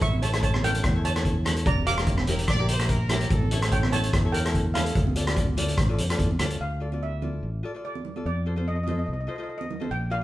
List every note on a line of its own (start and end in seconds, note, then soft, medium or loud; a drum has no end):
0.01 0.80 A1 loud
0.01 0.21 E5 medium
0.01 0.23 C#6 loud
0.01 kick loud
0.01 closed hi-hat medium
0.14 high conga medium
0.22 0.29 E4 medium
0.22 0.29 A4 medium
0.22 0.41 C#5 medium
0.22 0.29 C#5 medium
0.22 0.42 A5 medium
0.22 closed hi-hat medium
0.32 0.51 E4 medium
0.32 0.52 A4 medium
0.32 0.52 C#5 medium
0.32 cross-stick medium
0.32 closed hi-hat medium
0.43 0.62 C#5 medium
0.43 0.63 A5 loud
0.43 kick medium
0.43 closed hi-hat medium
0.54 cross-stick medium
0.54 high conga medium
0.63 0.82 E4 medium
0.63 0.82 A4 medium
0.63 1.02 A#4 medium
0.63 0.83 C#5 medium
0.63 1.02 G5 loud
0.63 closed hi-hat medium
0.63 low conga medium
0.74 closed hi-hat medium
0.84 1.62 E2 loud
0.84 kick loud
0.84 cross-stick medium
0.84 closed hi-hat medium
0.95 1.07 E4 medium
0.95 1.07 A4 medium
0.95 1.07 C#5 medium
1.05 1.43 C#5 medium
1.05 1.43 A5 loud
1.05 closed hi-hat medium
1.16 1.34 E4 medium
1.16 1.34 A4 medium
1.16 1.35 C#5 medium
1.16 cross-stick medium
1.16 closed hi-hat medium
1.25 kick medium
1.25 closed hi-hat medium
1.45 1.66 E4 medium
1.45 1.66 A4 medium
1.45 1.66 C#5 medium
1.45 cross-stick medium
1.45 closed hi-hat medium
1.45 low conga medium
1.56 closed hi-hat medium
1.66 2.45 E1 loud
1.66 1.86 D5 medium
1.66 1.88 A#5 loud
1.66 kick loud
1.66 closed hi-hat medium
1.78 high conga medium
1.86 1.93 E4 medium
1.86 1.93 G4 medium
1.86 1.94 A#4 medium
1.86 3.06 F5 medium
1.86 3.06 D6 loud
1.86 closed hi-hat medium
1.97 2.16 E4 medium
1.97 2.17 G4 medium
1.97 2.17 A#4 medium
1.97 cross-stick medium
1.97 closed hi-hat medium
2.07 kick medium
2.07 closed hi-hat medium
2.17 cross-stick medium
2.17 high conga medium
2.27 2.47 E4 medium
2.27 2.47 G4 medium
2.27 2.38 A#4 medium
2.27 2.47 A#4 medium
2.27 closed hi-hat medium
2.27 low conga medium
2.39 closed hi-hat medium
2.48 3.27 A#1 loud
2.48 2.68 D5 loud
2.48 kick loud
2.48 cross-stick medium
2.48 closed hi-hat medium
2.59 2.71 E4 medium
2.59 2.71 G4 medium
2.59 2.72 A#4 medium
2.68 2.88 C5 medium
2.68 closed hi-hat medium
2.79 2.98 E4 medium
2.79 2.99 G4 medium
2.79 2.99 A#4 loud
2.79 cross-stick medium
2.79 closed hi-hat medium
2.89 3.31 A#4 medium
2.89 kick medium
2.89 closed hi-hat medium
3.09 3.30 E4 medium
3.09 3.31 G4 medium
3.09 3.31 A#4 loud
3.09 cross-stick medium
3.09 closed hi-hat medium
3.09 low conga medium
3.21 closed hi-hat medium
3.30 4.09 A1 loud
3.30 3.62 A4 medium
3.30 kick loud
3.30 closed hi-hat medium
3.42 high conga medium
3.51 3.58 E4 medium
3.51 3.59 A4 medium
3.51 3.59 C#5 loud
3.51 closed hi-hat medium
3.61 3.80 E4 medium
3.61 3.81 A4 medium
3.61 3.81 C#5 medium
3.61 cross-stick medium
3.61 closed hi-hat medium
3.72 3.92 C#5 medium
3.72 3.94 G5 loud
3.72 kick medium
3.72 closed hi-hat medium
3.83 cross-stick medium
3.83 high conga medium
3.92 4.11 E4 medium
3.92 4.12 A4 medium
3.92 4.31 C#5 medium
3.92 4.12 C#5 medium
3.92 4.35 A5 loud
3.92 closed hi-hat medium
3.92 low conga medium
4.03 closed hi-hat medium
4.13 4.92 E2 loud
4.13 kick loud
4.13 cross-stick medium
4.13 closed hi-hat medium
4.24 4.36 E4 medium
4.24 4.36 A4 medium
4.24 4.37 C#5 medium
4.32 4.72 A#4 medium
4.32 4.76 G5 loud
4.32 closed hi-hat medium
4.44 4.63 E4 medium
4.44 4.63 A4 medium
4.44 4.64 C#5 medium
4.44 cross-stick medium
4.44 closed hi-hat medium
4.54 kick medium
4.54 closed hi-hat medium
4.74 4.96 E4 medium
4.74 6.36 A4 medium
4.74 4.96 A4 medium
4.74 4.96 C#5 medium
4.74 6.35 F5 medium
4.74 cross-stick medium
4.74 closed hi-hat medium
4.74 low conga medium
4.86 closed hi-hat medium
4.95 5.74 D2 loud
4.95 kick loud
4.95 closed hi-hat medium
5.07 high conga medium
5.16 5.23 F4 medium
5.16 5.23 A4 medium
5.16 5.23 D5 medium
5.16 closed hi-hat medium
5.16 high conga medium
5.27 5.46 F4 medium
5.27 5.46 A4 medium
5.27 5.46 D5 loud
5.27 cross-stick medium
5.27 closed hi-hat medium
5.37 kick loud
5.37 closed hi-hat medium
5.48 high conga medium
5.57 5.76 F4 medium
5.57 5.76 A4 medium
5.57 5.77 D5 loud
5.57 closed hi-hat medium
5.57 low conga medium
5.68 closed hi-hat medium
5.77 5.97 A1 loud
5.77 kick loud
5.77 cross-stick medium
5.77 closed hi-hat medium
5.89 6.01 F4 medium
5.89 6.01 A4 medium
5.89 6.01 D5 medium
5.98 6.17 F2 medium
5.98 closed hi-hat medium
6.09 6.28 F4 medium
6.09 6.28 A4 medium
6.09 6.29 D5 loud
6.09 cross-stick medium
6.09 closed hi-hat medium
6.19 6.38 E2 medium
6.19 kick medium
6.19 closed hi-hat medium
6.31 high conga medium
6.39 6.59 D2 medium
6.39 6.60 F4 medium
6.39 6.60 A4 medium
6.39 6.61 D5 medium
6.39 cross-stick medium
6.39 closed hi-hat medium
6.39 low conga medium
6.50 closed hi-hat medium
6.61 7.39 D2 medium
6.61 7.03 F5 medium
6.80 6.87 F4 medium
6.80 6.88 A4 medium
6.80 6.88 D5 medium
6.92 7.11 F4 medium
6.92 7.11 A4 medium
6.92 7.11 D5 medium
6.92 high conga medium
7.03 7.81 E5 medium
7.22 7.47 F4 medium
7.22 7.48 A4 medium
7.22 7.48 D5 medium
7.22 high conga medium
7.22 low conga medium
7.43 7.62 A1 medium
7.63 7.70 F4 medium
7.63 7.71 A4 medium
7.63 7.71 D5 medium
7.74 7.99 F4 medium
7.74 7.99 A4 medium
7.74 8.00 D5 medium
7.85 8.23 D5 medium
7.95 high conga medium
8.05 low conga medium
8.16 8.26 F4 medium
8.16 8.26 A4 medium
8.16 8.26 D5 medium
8.16 high conga medium
8.26 9.04 F2 medium
8.26 8.64 D5 medium
8.46 8.53 F4 medium
8.46 8.53 A4 medium
8.46 8.53 C5 medium
8.56 8.75 F4 medium
8.56 8.76 A4 medium
8.56 8.76 C5 medium
8.56 high conga medium
8.68 8.74 D#5 medium
8.76 8.82 D#5 medium
8.83 9.12 F4 medium
8.83 8.90 D#5 medium
8.87 9.13 A4 medium
8.87 9.13 C5 medium
8.87 8.98 D#5 medium
8.87 high conga medium
8.87 low conga medium
8.99 9.05 D#5 medium
9.06 9.28 C2 medium
9.06 9.12 D#5 soft
9.13 9.19 D#5 medium
9.21 9.27 D#5 soft
9.27 9.35 F4 medium
9.27 9.35 A4 medium
9.27 9.35 C5 medium
9.27 9.34 D#5 medium
9.35 9.64 F4 medium
9.35 9.64 A4 medium
9.35 9.42 D#5 soft
9.39 9.64 C5 medium
9.39 9.48 D#5 medium
9.49 9.57 D#5 medium
9.58 9.64 D#5 medium
9.58 high conga medium
9.71 low conga medium
9.80 9.90 F4 medium
9.80 9.90 A4 medium
9.80 9.91 C5 medium
9.80 high conga medium
9.91 10.23 A#1 medium
9.91 10.12 G5 medium
10.10 10.18 F4 medium
10.10 10.18 A#4 medium
10.10 10.18 D5 medium
10.10 10.23 F5 medium